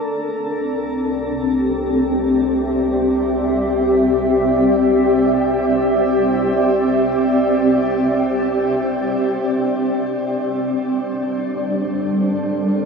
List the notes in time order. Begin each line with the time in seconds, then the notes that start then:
Already playing: C2 C4 D4 A4 A#4
0.66 G4
1.38 D5
1.82 E5
9.78 G3
10.56 D4
11.03 A4
11.89 A#4